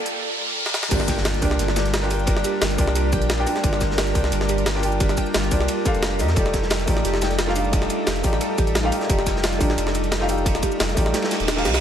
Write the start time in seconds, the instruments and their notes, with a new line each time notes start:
Already playing: felt piano A#3 D4 F4 D5, ambient pad A#3 F4 A4 D5, riser
0.06 closed hi-hat, shaker
0.66 snare
0.74 snare
0.83 snare
0.89 sub bass G1, ambient pad G3 F4 A#4 D5, felt piano A#3 D4 F4 G4, synth pluck G4, kick, closed hi-hat, crash, ride, impact
0.93 felt piano D5
1.00 snare
1.08 synth pluck G5, kick, snare, closed hi-hat, ride, shaker
1.17 snare
1.25 synth pluck F4, snare, closed hi-hat, ride, shaker
1.34 snare, closed hi-hat
1.40 sub bass C2, felt piano A#3 D4 F4 G4, synth pluck D4, kick, open hi-hat, ride, shaker
1.45 felt piano D5
1.51 snare
1.59 sub bass G1, snare, closed hi-hat, ride
1.68 snare
1.76 snare, closed hi-hat, ride, shaker
1.85 snare, closed hi-hat
1.93 synth pluck G4, snare, closed hi-hat, ride
2.01 felt piano A#3 D4 F4 G4 G5, snare
2.09 felt piano A#3 D4 F4 G4 G5, synth pluck G5, open hi-hat, ride, shaker
2.20 shaker
2.25 felt piano A#3 D4 F4 G4, synth pluck A#4, kick, closed hi-hat, ride
2.30 felt piano D5
2.37 snare
2.44 synth pluck G4, closed hi-hat, ride, shaker
2.62 sub bass G1, snare, closed hi-hat, ride, shaker
2.70 snare, closed hi-hat
2.76 sub bass C2, felt piano A#3 D4 F4 G4, kick, open hi-hat, ride, shaker
2.81 felt piano D5
2.87 snare
2.95 synth pluck G4, closed hi-hat, ride
3.13 sub bass A#1, synth pluck G5, kick, closed hi-hat, ride, shaker
3.22 closed hi-hat
3.29 synth pluck F4, snare, closed hi-hat, ride
3.38 felt piano A#3 D4 F4 G4 G5
3.46 felt piano A#3 D4 F4 G4 G5, synth pluck D4, open hi-hat, ride, shaker
3.55 snare, shaker
3.62 sub bass G1, felt piano A#3 D4 F4 G4, kick, closed hi-hat, ride
3.66 felt piano D5
3.73 snare
3.81 kick, snare, closed hi-hat, ride, shaker
3.91 snare
3.98 synth pluck G4, snare, closed hi-hat, ride, shaker
4.07 snare, closed hi-hat
4.13 sub bass C2, felt piano A#3 D4 F4 G4, synth pluck G5, kick, open hi-hat, ride, shaker
4.17 felt piano D5
4.24 snare
4.32 sub bass G1, synth pluck A#4, closed hi-hat, ride
4.41 snare
4.49 synth pluck G4, closed hi-hat, ride, shaker
4.58 closed hi-hat
4.66 snare, closed hi-hat, ride
4.74 felt piano A#3 D4 F4 G4 G5, snare
4.82 felt piano A#3 D4 F4 G4 G5, open hi-hat, ride, shaker
4.92 shaker
4.98 felt piano A#3 D4 F4 G4, synth pluck G4, kick, closed hi-hat, ride
5.03 felt piano D5
5.09 snare, closed hi-hat
5.17 synth pluck G5, kick, closed hi-hat, ride, shaker
5.26 shaker
5.34 sub bass G1, synth pluck F4, snare, closed hi-hat, ride, shaker
5.43 snare, closed hi-hat
5.51 sub bass C2, felt piano A#3 D4 F4 G4 D5, synth pluck D4, kick, open hi-hat, ride, shaker
5.60 snare
5.68 closed hi-hat, ride
5.85 felt piano A#3 D4 F4 G4 F5, synth pluck A4, kick, closed hi-hat, ride, shaker
5.95 sub bass F1, closed hi-hat
6.02 synth pluck G4, snare, closed hi-hat, ride
6.19 sub bass F2, felt piano A3 D#4 F4 G4 D#5, ambient pad D#4 A4, synth pluck G4, open hi-hat, ride, shaker
6.29 snare, shaker
6.35 sub bass F1, felt piano A3 D#4 F4 G4, synth pluck A4, kick, closed hi-hat, ride
6.39 felt piano D5
6.46 snare
6.53 synth pluck G4, kick, snare, closed hi-hat, ride, shaker
6.63 snare
6.70 snare, closed hi-hat, ride, shaker
6.80 snare, closed hi-hat
6.86 sub bass A1, felt piano A3 D#4 F4 G4, kick, open hi-hat, ride, shaker
6.90 felt piano D5
6.97 snare
7.05 sub bass F1, synth pluck G4, snare, closed hi-hat, ride
7.14 snare
7.22 synth pluck G5, snare, closed hi-hat, ride, shaker
7.31 snare, closed hi-hat
7.39 synth pluck F4, snare, closed hi-hat, ride
7.47 felt piano A3 D#4 F4 G4 F5, snare
7.55 felt piano A3 D#4 F4 G4 F5, synth pluck D4, open hi-hat, ride, shaker
7.65 shaker
7.71 felt piano A3 D#4 F4 G4, kick, closed hi-hat, ride
7.75 felt piano D5
7.82 snare
7.90 closed hi-hat, ride, shaker
8.07 sub bass F1, synth pluck G4, snare, closed hi-hat, ride, shaker
8.16 snare, closed hi-hat
8.22 sub bass A1, felt piano A3 D#4 F4 G4, synth pluck G5, kick, open hi-hat, ride, shaker
8.26 felt piano D5
8.33 snare
8.41 synth pluck A4, closed hi-hat, ride
8.58 sub bass A1, synth pluck G4, kick, closed hi-hat, ride, shaker
8.67 closed hi-hat
8.75 snare, closed hi-hat, ride
8.83 felt piano A3 D#4 F4 G4 F5
8.91 felt piano A3 D#4 F4 G4 F5, open hi-hat, ride, shaker
9.01 snare, shaker
9.07 sub bass F1, felt piano A3 D#4 F4 G4, synth pluck G4, kick, closed hi-hat, ride
9.11 felt piano D5
9.19 snare
9.26 synth pluck G5, kick, snare, closed hi-hat, ride, shaker
9.36 snare
9.43 synth pluck F4, snare, closed hi-hat, ride, shaker
9.53 snare, closed hi-hat
9.58 sub bass A1, felt piano A3 D#4 F4 G4, synth pluck D4, kick, open hi-hat, ride, shaker
9.63 felt piano D5
9.69 snare
9.78 sub bass F1, closed hi-hat, ride
9.87 snare
9.95 closed hi-hat, ride, shaker
10.04 closed hi-hat
10.12 synth pluck G4, snare, closed hi-hat, ride
10.20 felt piano A3 D#4 F4 G4 F5, snare
10.28 felt piano A3 D#4 F4 G4 F5, synth pluck G5, open hi-hat, ride, shaker
10.38 shaker
10.43 felt piano A3 D#4 F4 G4, synth pluck A4, kick, closed hi-hat, ride
10.48 felt piano D5
10.55 snare, closed hi-hat
10.62 synth pluck G4, kick, closed hi-hat, ride, shaker
10.72 shaker
10.80 sub bass F1, snare, closed hi-hat, ride, shaker
10.89 snare, closed hi-hat
10.95 sub bass A1, felt piano A3 D#4 F4 G4, kick, open hi-hat, ride, shaker
10.99 felt piano D5
11.06 snare
11.14 synth pluck G4, snare, closed hi-hat, ride, reverse cymbal
11.22 snare, ride
11.31 synth pluck G5, snare, closed hi-hat, ride, shaker
11.40 sub bass D#1, snare, closed hi-hat
11.48 synth pluck D4, snare, closed hi-hat, ride
11.56 felt piano A3 D#4 F4 G4 F5, snare, ride
11.64 sub bass C2, felt piano C4 D#4 F4 A#4 F5, synth pluck G4, snare, open hi-hat, shaker
11.74 snare, closed hi-hat, ride, shaker